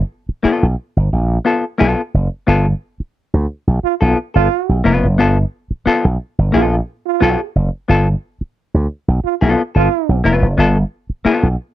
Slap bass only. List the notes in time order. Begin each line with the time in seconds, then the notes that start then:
0.29 muted slap bass stroke
0.45 muted slap bass stroke
0.63 B1
0.97 G1
1.13 A#1
1.81 B1
2.14 F#1
2.48 G1
3.00 muted slap bass stroke
3.34 D2
3.67 B1
3.83 muted slap bass stroke
4.01 B1
4.35 G1
4.69 B1
4.85 F1
5.03 F#1
5.19 G1
5.70 muted slap bass stroke
5.87 muted slap bass stroke
6.05 B1
6.38 G1
6.54 A#1
7.22 B1
7.55 F#1
7.89 G1
8.41 muted slap bass stroke
8.74 D2
9.08 B1
9.42 B1
9.75 G1
10.09 B1
10.25 F1
10.42 F#1
10.58 G1
11.09 muted slap bass stroke
11.25 muted slap bass stroke
11.43 B1